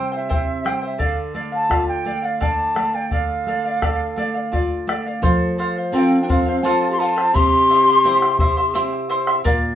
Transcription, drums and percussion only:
0, 0, Header, 1, 3, 480
1, 0, Start_track
1, 0, Tempo, 703400
1, 686, Time_signature, 3, 2, 24, 8
1, 6653, End_track
2, 0, Start_track
2, 0, Title_t, "Bombo"
2, 91, Note_on_c, 9, 37, 20
2, 160, Note_off_c, 9, 37, 0
2, 211, Note_on_c, 9, 37, 20
2, 211, Note_on_c, 9, 43, 70
2, 279, Note_off_c, 9, 37, 0
2, 279, Note_off_c, 9, 43, 0
2, 450, Note_on_c, 9, 37, 66
2, 518, Note_off_c, 9, 37, 0
2, 681, Note_on_c, 9, 43, 62
2, 749, Note_off_c, 9, 43, 0
2, 1166, Note_on_c, 9, 37, 64
2, 1166, Note_on_c, 9, 43, 65
2, 1234, Note_off_c, 9, 37, 0
2, 1234, Note_off_c, 9, 43, 0
2, 1526, Note_on_c, 9, 37, 19
2, 1594, Note_off_c, 9, 37, 0
2, 1649, Note_on_c, 9, 37, 19
2, 1649, Note_on_c, 9, 43, 64
2, 1717, Note_off_c, 9, 37, 0
2, 1717, Note_off_c, 9, 43, 0
2, 1885, Note_on_c, 9, 37, 66
2, 1953, Note_off_c, 9, 37, 0
2, 2124, Note_on_c, 9, 43, 64
2, 2192, Note_off_c, 9, 43, 0
2, 2249, Note_on_c, 9, 37, 19
2, 2317, Note_off_c, 9, 37, 0
2, 2365, Note_on_c, 9, 37, 21
2, 2434, Note_off_c, 9, 37, 0
2, 2609, Note_on_c, 9, 37, 62
2, 2609, Note_on_c, 9, 43, 63
2, 2677, Note_off_c, 9, 37, 0
2, 2677, Note_off_c, 9, 43, 0
2, 2972, Note_on_c, 9, 37, 18
2, 3041, Note_off_c, 9, 37, 0
2, 3096, Note_on_c, 9, 37, 22
2, 3096, Note_on_c, 9, 43, 64
2, 3164, Note_off_c, 9, 37, 0
2, 3164, Note_off_c, 9, 43, 0
2, 3337, Note_on_c, 9, 37, 69
2, 3406, Note_off_c, 9, 37, 0
2, 3573, Note_on_c, 9, 37, 26
2, 3573, Note_on_c, 9, 43, 83
2, 3641, Note_off_c, 9, 37, 0
2, 3641, Note_off_c, 9, 43, 0
2, 3818, Note_on_c, 9, 37, 26
2, 3886, Note_off_c, 9, 37, 0
2, 4297, Note_on_c, 9, 43, 82
2, 4365, Note_off_c, 9, 43, 0
2, 4662, Note_on_c, 9, 37, 24
2, 4730, Note_off_c, 9, 37, 0
2, 4781, Note_on_c, 9, 37, 26
2, 4849, Note_off_c, 9, 37, 0
2, 4898, Note_on_c, 9, 37, 58
2, 4967, Note_off_c, 9, 37, 0
2, 5018, Note_on_c, 9, 37, 26
2, 5018, Note_on_c, 9, 43, 84
2, 5086, Note_off_c, 9, 37, 0
2, 5086, Note_off_c, 9, 43, 0
2, 5255, Note_on_c, 9, 37, 27
2, 5323, Note_off_c, 9, 37, 0
2, 5611, Note_on_c, 9, 37, 56
2, 5679, Note_off_c, 9, 37, 0
2, 5724, Note_on_c, 9, 43, 81
2, 5793, Note_off_c, 9, 43, 0
2, 6093, Note_on_c, 9, 37, 25
2, 6162, Note_off_c, 9, 37, 0
2, 6209, Note_on_c, 9, 37, 28
2, 6277, Note_off_c, 9, 37, 0
2, 6328, Note_on_c, 9, 37, 60
2, 6396, Note_off_c, 9, 37, 0
2, 6451, Note_on_c, 9, 37, 24
2, 6451, Note_on_c, 9, 43, 79
2, 6520, Note_off_c, 9, 37, 0
2, 6520, Note_off_c, 9, 43, 0
2, 6653, End_track
3, 0, Start_track
3, 0, Title_t, "Drums"
3, 3571, Note_on_c, 9, 82, 81
3, 3639, Note_off_c, 9, 82, 0
3, 3812, Note_on_c, 9, 82, 28
3, 3881, Note_off_c, 9, 82, 0
3, 4049, Note_on_c, 9, 82, 85
3, 4117, Note_off_c, 9, 82, 0
3, 4168, Note_on_c, 9, 82, 30
3, 4236, Note_off_c, 9, 82, 0
3, 4526, Note_on_c, 9, 82, 104
3, 4594, Note_off_c, 9, 82, 0
3, 4648, Note_on_c, 9, 82, 31
3, 4716, Note_off_c, 9, 82, 0
3, 5004, Note_on_c, 9, 82, 90
3, 5072, Note_off_c, 9, 82, 0
3, 5248, Note_on_c, 9, 82, 30
3, 5316, Note_off_c, 9, 82, 0
3, 5484, Note_on_c, 9, 82, 96
3, 5552, Note_off_c, 9, 82, 0
3, 5612, Note_on_c, 9, 82, 29
3, 5680, Note_off_c, 9, 82, 0
3, 5966, Note_on_c, 9, 82, 108
3, 6034, Note_off_c, 9, 82, 0
3, 6089, Note_on_c, 9, 82, 32
3, 6157, Note_off_c, 9, 82, 0
3, 6448, Note_on_c, 9, 82, 97
3, 6517, Note_off_c, 9, 82, 0
3, 6653, End_track
0, 0, End_of_file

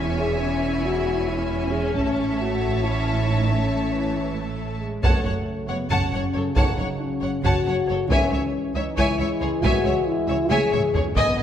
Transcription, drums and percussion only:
0, 0, Header, 1, 2, 480
1, 0, Start_track
1, 0, Tempo, 438276
1, 474, Time_signature, 7, 3, 24, 8
1, 12515, End_track
2, 0, Start_track
2, 0, Title_t, "Taiko and cinematic ensemble drums"
2, 2154, Note_on_c, 9, 41, 54
2, 2264, Note_off_c, 9, 41, 0
2, 2881, Note_on_c, 9, 41, 28
2, 2991, Note_off_c, 9, 41, 0
2, 5512, Note_on_c, 9, 41, 79
2, 5622, Note_off_c, 9, 41, 0
2, 6473, Note_on_c, 9, 41, 62
2, 6582, Note_off_c, 9, 41, 0
2, 7186, Note_on_c, 9, 41, 80
2, 7296, Note_off_c, 9, 41, 0
2, 8155, Note_on_c, 9, 41, 64
2, 8265, Note_off_c, 9, 41, 0
2, 8874, Note_on_c, 9, 41, 89
2, 8983, Note_off_c, 9, 41, 0
2, 9837, Note_on_c, 9, 41, 64
2, 9946, Note_off_c, 9, 41, 0
2, 10555, Note_on_c, 9, 41, 87
2, 10664, Note_off_c, 9, 41, 0
2, 11512, Note_on_c, 9, 48, 63
2, 11621, Note_off_c, 9, 48, 0
2, 11753, Note_on_c, 9, 45, 80
2, 11863, Note_off_c, 9, 45, 0
2, 11988, Note_on_c, 9, 43, 85
2, 12098, Note_off_c, 9, 43, 0
2, 12227, Note_on_c, 9, 41, 86
2, 12336, Note_off_c, 9, 41, 0
2, 12515, End_track
0, 0, End_of_file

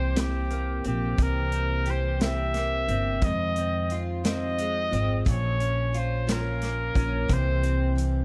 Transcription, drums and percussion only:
0, 0, Header, 1, 2, 480
1, 0, Start_track
1, 0, Tempo, 678273
1, 841, Time_signature, 6, 3, 24, 8
1, 5836, End_track
2, 0, Start_track
2, 0, Title_t, "Drums"
2, 115, Note_on_c, 9, 42, 102
2, 121, Note_on_c, 9, 38, 110
2, 185, Note_off_c, 9, 42, 0
2, 191, Note_off_c, 9, 38, 0
2, 356, Note_on_c, 9, 42, 50
2, 427, Note_off_c, 9, 42, 0
2, 596, Note_on_c, 9, 42, 45
2, 666, Note_off_c, 9, 42, 0
2, 838, Note_on_c, 9, 36, 106
2, 838, Note_on_c, 9, 42, 78
2, 909, Note_off_c, 9, 36, 0
2, 909, Note_off_c, 9, 42, 0
2, 1074, Note_on_c, 9, 42, 48
2, 1145, Note_off_c, 9, 42, 0
2, 1312, Note_on_c, 9, 42, 48
2, 1383, Note_off_c, 9, 42, 0
2, 1562, Note_on_c, 9, 42, 91
2, 1568, Note_on_c, 9, 38, 102
2, 1632, Note_off_c, 9, 42, 0
2, 1639, Note_off_c, 9, 38, 0
2, 1797, Note_on_c, 9, 42, 47
2, 1808, Note_on_c, 9, 38, 35
2, 1868, Note_off_c, 9, 42, 0
2, 1878, Note_off_c, 9, 38, 0
2, 2040, Note_on_c, 9, 42, 47
2, 2111, Note_off_c, 9, 42, 0
2, 2274, Note_on_c, 9, 42, 70
2, 2280, Note_on_c, 9, 36, 102
2, 2345, Note_off_c, 9, 42, 0
2, 2351, Note_off_c, 9, 36, 0
2, 2518, Note_on_c, 9, 42, 51
2, 2588, Note_off_c, 9, 42, 0
2, 2758, Note_on_c, 9, 42, 47
2, 2828, Note_off_c, 9, 42, 0
2, 3005, Note_on_c, 9, 42, 104
2, 3011, Note_on_c, 9, 38, 99
2, 3075, Note_off_c, 9, 42, 0
2, 3081, Note_off_c, 9, 38, 0
2, 3243, Note_on_c, 9, 42, 56
2, 3314, Note_off_c, 9, 42, 0
2, 3487, Note_on_c, 9, 42, 46
2, 3558, Note_off_c, 9, 42, 0
2, 3724, Note_on_c, 9, 36, 105
2, 3725, Note_on_c, 9, 42, 83
2, 3795, Note_off_c, 9, 36, 0
2, 3796, Note_off_c, 9, 42, 0
2, 3964, Note_on_c, 9, 42, 51
2, 4034, Note_off_c, 9, 42, 0
2, 4205, Note_on_c, 9, 42, 45
2, 4275, Note_off_c, 9, 42, 0
2, 4447, Note_on_c, 9, 42, 96
2, 4453, Note_on_c, 9, 38, 103
2, 4518, Note_off_c, 9, 42, 0
2, 4524, Note_off_c, 9, 38, 0
2, 4681, Note_on_c, 9, 42, 53
2, 4691, Note_on_c, 9, 38, 36
2, 4752, Note_off_c, 9, 42, 0
2, 4762, Note_off_c, 9, 38, 0
2, 4921, Note_on_c, 9, 36, 85
2, 4925, Note_on_c, 9, 42, 49
2, 4992, Note_off_c, 9, 36, 0
2, 4996, Note_off_c, 9, 42, 0
2, 5162, Note_on_c, 9, 42, 75
2, 5163, Note_on_c, 9, 36, 100
2, 5233, Note_off_c, 9, 36, 0
2, 5233, Note_off_c, 9, 42, 0
2, 5400, Note_on_c, 9, 42, 54
2, 5471, Note_off_c, 9, 42, 0
2, 5647, Note_on_c, 9, 42, 50
2, 5718, Note_off_c, 9, 42, 0
2, 5836, End_track
0, 0, End_of_file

